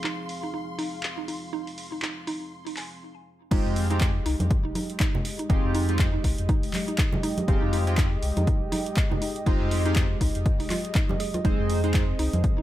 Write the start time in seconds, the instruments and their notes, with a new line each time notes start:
Already playing: analog synth pad F3 C4 G#4 F5, violin section C6
0.04 synth arpeggio sound D#4, clap
0.29 open hi-hat
0.43 synth arpeggio sound D#4
0.54 synth arpeggio sound D#4
0.79 synth arpeggio sound D#4, open hi-hat
1.03 clap
1.18 synth arpeggio sound D#4
1.28 synth arpeggio sound D#4, open hi-hat
1.53 synth arpeggio sound D#4
1.67 open hi-hat
1.78 open hi-hat
1.92 synth arpeggio sound D#4
2.02 synth arpeggio sound D#4, clap
2.27 synth arpeggio sound D#4, open hi-hat
2.67 synth arpeggio sound D#4, open hi-hat
2.77 synth arpeggio sound G#5, clap, open hi-hat
3.51 sub bass F1, analog polysynth G#3 C4 D#4 F4 G4, analog synth pad G#3 G4 D#5, synth arpeggio sound D#4, kick, closed hi-hat, crash
3.66 sub bass F2
3.76 open hi-hat
3.90 analog polysynth G#3 C4 D#4 F4 G4, synth arpeggio sound D#4, closed hi-hat
4.01 synth arpeggio sound D#4, kick, clap, closed hi-hat
4.26 sub bass C2, synth arpeggio sound D#4, open hi-hat
4.40 sub bass F2, closed hi-hat, high conga
4.51 kick, closed hi-hat
4.65 sub bass F1, synth arpeggio sound D#4
4.75 synth arpeggio sound D#4, open hi-hat, high conga
4.90 closed hi-hat
5.00 synth arpeggio sound D#4, kick, clap, closed hi-hat
5.15 low conga
5.25 open hi-hat
5.39 synth arpeggio sound D#4, closed hi-hat
5.49 sub bass F1, analog polysynth G#3 C4 D#4 F4 G4, synth arpeggio sound D#4, kick, closed hi-hat
5.64 sub bass F2
5.75 synth arpeggio sound D#4, open hi-hat
5.88 analog polysynth G#3 C4 D#4 F4 G4, closed hi-hat
5.99 kick, clap, closed hi-hat
6.14 synth arpeggio sound D#4
6.24 sub bass C2, synth arpeggio sound D#4, kick, open hi-hat
6.38 sub bass F2, closed hi-hat
6.49 synth arpeggio sound D#4, kick, closed hi-hat
6.63 sub bass F1, open hi-hat
6.73 clap, open hi-hat, high conga
6.88 synth arpeggio sound D#4, closed hi-hat
6.98 synth arpeggio sound D#4, kick, clap, closed hi-hat
7.13 high conga, low conga
7.23 synth arpeggio sound D#4, open hi-hat
7.38 closed hi-hat, high conga
7.48 sub bass F1, analog polysynth G#3 C4 D#4 F4 G4, kick, closed hi-hat
7.62 sub bass F2, synth arpeggio sound D#4
7.73 synth arpeggio sound D#4, open hi-hat
7.87 analog polysynth G#3 C4 D#4 F4 G4, closed hi-hat
7.98 synth arpeggio sound D#4, kick, clap, closed hi-hat
8.23 sub bass C2, open hi-hat
8.37 sub bass F2, synth arpeggio sound D#4, closed hi-hat, high conga
8.47 synth arpeggio sound D#4, kick, closed hi-hat
8.62 sub bass F1
8.72 synth arpeggio sound D#4, open hi-hat, high conga
8.86 closed hi-hat
8.97 kick, clap, closed hi-hat
9.11 synth arpeggio sound D#4, low conga
9.22 synth arpeggio sound D#4, open hi-hat
9.36 closed hi-hat
9.46 sub bass F1, analog polysynth G#3 C4 D#4 F4 G4, synth arpeggio sound D#4, kick, closed hi-hat
9.61 sub bass F2
9.71 open hi-hat
9.85 analog polysynth G#3 C4 D#4 F4 G4, synth arpeggio sound D#4, closed hi-hat
9.96 kick, clap, closed hi-hat
10.21 sub bass C2, synth arpeggio sound D#4, kick, open hi-hat
10.35 sub bass F2, closed hi-hat
10.46 kick, closed hi-hat
10.60 sub bass F1, synth arpeggio sound D#4, open hi-hat
10.70 synth arpeggio sound F4, clap, open hi-hat, high conga
10.85 closed hi-hat
10.95 synth arpeggio sound D#4, kick, clap, closed hi-hat
11.09 synth arpeggio sound G4, high conga, low conga
11.20 synth arpeggio sound G#4, open hi-hat
11.34 synth arpeggio sound F4, closed hi-hat, high conga
11.44 sub bass F1, analog polysynth G#3 C4 D#4 G#4 C5, analog synth pad C4 G#4, synth arpeggio sound D#4, kick, closed hi-hat
11.59 sub bass F2
11.70 open hi-hat
11.83 analog polysynth G#3 C4 D#4 G#4 C5, synth arpeggio sound D#4, closed hi-hat
11.94 synth arpeggio sound D#4, kick, clap, closed hi-hat
12.19 sub bass C2, synth arpeggio sound D#4, open hi-hat
12.33 sub bass F2, closed hi-hat, high conga
12.44 kick, closed hi-hat
12.58 sub bass F1, synth arpeggio sound D#4